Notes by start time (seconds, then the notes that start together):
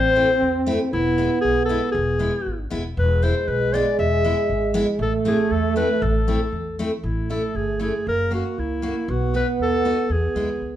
Already playing: A1 C4 C5
0.16 A3 C4 E4
0.42 E2
0.66 A3 C4 E4
0.92 E1 B3 E4
1.18 G#3 B3 E4
1.41 B1 G#4
1.65 A4
1.69 G#3 B3 E4
1.92 E1 G#4
2.19 G#3 B3 E4
2.46 G#1
2.70 E1 G#3 B3 E4
2.97 E1 G#3 B4
3.22 G#3 B3 E4 C5
3.48 B1 B4
3.74 G#3 B3 E4 D5
3.99 E1 E5
4.24 G#3 B3 E4
4.49 G#1
4.74 G#3 B3 E4
4.99 A1 A3 A4
5.25 A3 C4 E4 G#4
5.51 E2 A4
5.76 A3 C4 E4 B4
6.02 A1 A4
6.28 A3 C4 E4
6.52 E2
6.79 A3 C4 E4
7.03 A1 A3 E4
7.30 A3 C#4 E4 A4
7.55 G1 G#4
7.80 A3 C#4 E4 G#4
8.07 F#1 A#3 A#4
8.31 A#3 C#4 F#4
8.58 C#2 E4
8.82 A#3 C#4 F#4
9.08 B1 B3 F#4
9.34 B3 D#4 F#4 B4
9.59 D#2 A4
9.85 B3 D#4 F#4
10.09 E2 B3 G#4
10.35 D2 G#3 B3 E4
10.61 C#2